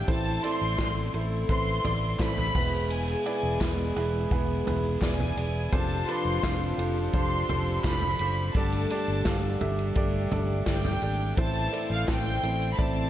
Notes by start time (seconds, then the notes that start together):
Already playing: A3 D4 G4 A4 D5
0.08 A1 A2 E3 C4 E4 A4 C5 A5, kick, ride
0.44 C4 E4 A4 D5 C6, ride
0.62 A1
0.78 A1 C4 E4 A4 D5, kick, snare, clap, ride
1.14 A1 A3 C4 E4 A4 C5, ride
1.49 A1 C4 E4 A4 B4 C6, kick, ride
1.85 A1 C4 E4 A4 D5, floor tom, ride
2.20 A1 C4 E4 A4 D5 B5, kick, snare, clap, ride
2.38 snare, floor tom
2.55 E1 B2 G#3 B3 E4 G#4 B4, kick, crash
2.90 G#5, ride
3.08 ride
3.26 B3 E4 G#4 D5, ride
3.43 E1
3.61 E1 B3 E4 G#4 B4, kick, snare, clap, ride
3.96 E1 B3 E4 G#4 B4, ride
4.31 E1 B3 E4 G#4 B4, kick, ride
4.67 E1 B3 E4 G#4 B4, floor tom, ride
5.02 E1 B3 E4 G#4 D5 G#5, kick, snare, clap, ride
5.20 floor tom
5.37 E1 B3 E4 G#4 D5, ride
5.71 F1 C3 F3 C4 D4 F4 G4 A4 C5 A5, kick, ride
6.08 D4 F4 A4 B4 C6, ride
6.25 F1
6.43 F1 D4 F4 A4 C5, kick, snare, clap, ride
6.78 F1 D4 F4 A4 C5, ride
7.13 F1 D4 F4 A4 C5 C6, kick, ride
7.49 F1 D4 F4 A4 C5, floor tom, ride
7.84 F1 D4 F4 A4 C5 B5, kick, snare, clap, ride
8.02 floor tom
8.19 F#1 D4 F4 A4 C5, ride
8.54 G1 G2 D3 G3 A3 D4 G4 A4 D5 A5, kick, ride
8.72 ride
8.90 D4 G4 A4 D5, ride
9.08 G1
9.25 G1 D4 G4 A4 F5, kick, snare, clap, ride
9.61 G1 D4 G4 A4 E5, floor tom, ride
9.79 ride
9.95 G1 G3 D4 G4 A4 D5, kick, ride
10.32 G1 D4 G4 A4 D5, floor tom, ride
10.66 G1 D4 G4 A4 D5 G5, kick, snare, clap, ride
10.85 snare, floor tom
11.02 G#1 D4 G4 A4 D5, ride
11.37 A1 A2 E3 C4 E4 A4 C5 A5, kick, ride
11.55 ride
11.72 C4 E4 A4 D5, ride
11.90 A1 F5
12.08 A1 C4 E4 A4 C5 G5, kick, snare, clap, ride
12.43 A1 C4 E4 A4 C5, ride
12.62 ride
12.72 B5
12.78 A1 C3 C4 E4 A4 D5 A5, kick, ride